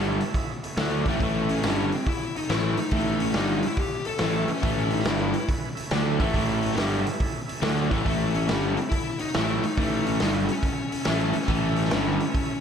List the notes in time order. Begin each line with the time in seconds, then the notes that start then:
Already playing: G1 G2 D3 G3 C#4 E4 A4
0.21 open hi-hat
0.34 kick, open hi-hat
0.63 C#4 E4 A4, open hi-hat
0.77 D2 D3 A3 D4, snare, open hi-hat
1.06 A1 A2 E3 A3, kick, open hi-hat
1.18 A1 G#3 A3 C#4 E4 A4, kick, open hi-hat
1.22 A2 E3 A3
1.46 C#4 E4 G#4, open hi-hat
1.63 G1 G2 D3 G3, snare, open hi-hat
1.92 C4, open hi-hat
2.07 E4, kick, open hi-hat
2.34 C#4 D#4 E4 A4, open hi-hat
2.50 A1 A2 E3 A3 E4, snare, open hi-hat
2.77 D#4, muted overdriven electric guitar stroke, muted fingered electric bass stroke, open hi-hat
2.91 A1 A2 E3 A3 C#4 E4 B4, kick, open hi-hat
3.20 C#4 E4 F#4, open hi-hat
3.34 G1 G2 D3 G3 D#4, snare, open hi-hat
3.63 open hi-hat
3.67 E4
3.77 G4, kick, open hi-hat
4.05 C#4 E4 A4, open hi-hat
4.19 A1 A2 E3 A3, snare, open hi-hat
4.48 C#4, muted fingered electric bass stroke, muted overdriven electric guitar stroke, open hi-hat
4.56 snare
4.62 A1 A2 E3 A3 C#4 E4 A4, kick, open hi-hat
4.91 C#4 D#4 E4 B4, open hi-hat
4.99 snare
5.05 G1 G2 D3 G3 E4, snare, open hi-hat
5.34 open hi-hat
5.49 kick, open hi-hat
5.75 C#4 E4 A4, open hi-hat
5.91 D2 D3 A3 D4, snare, open hi-hat
6.20 A1 A2 E3 A3, kick, open hi-hat
6.32 A1 A2 E3 A3 C#4 E4 A4, kick, open hi-hat
6.62 C#4 E4 A4, open hi-hat
6.71 snare
6.76 G1 G2 D3 G3, snare, open hi-hat
7.07 open hi-hat
7.20 kick, open hi-hat
7.46 C#4 E4 A4, open hi-hat
7.62 D2 D3 A3 D4, snare, open hi-hat
7.91 A1 A2 E3 A3, kick, open hi-hat
8.05 A1 A2 E3 A3 C#4 E4 A4, kick, open hi-hat
8.34 C#4 E4 A4, open hi-hat
8.48 G1 G2 D3 G3, snare, open hi-hat
8.77 C4, open hi-hat
8.89 E4, kick, open hi-hat
9.18 C#4 D#4 E4 F#4, open hi-hat
9.34 A1 A2 E3 A3 E4, snare, open hi-hat
9.64 D#4, muted fingered electric bass stroke, muted overdriven electric guitar stroke, open hi-hat
9.77 A1 A2 E3 A3 C#4 E4 A4, kick, open hi-hat
10.05 C#4 E4 A4, open hi-hat
10.20 G1 G2 D3 G3 D#4, snare, open hi-hat
10.49 C#4, open hi-hat
10.63 kick, open hi-hat
10.90 C#4 E4 A4, open hi-hat
11.05 A1 A2 E3 A3, snare, open hi-hat
11.33 muted overdriven electric guitar stroke, muted fingered electric bass stroke, open hi-hat
11.42 C#4 E4 A4, snare
11.48 A1 A2 E3 A3, kick, open hi-hat
11.75 C#4 E4 A4, open hi-hat
11.84 snare
11.91 G1 G2 D3 G3, snare, open hi-hat
12.20 open hi-hat
12.35 kick, open hi-hat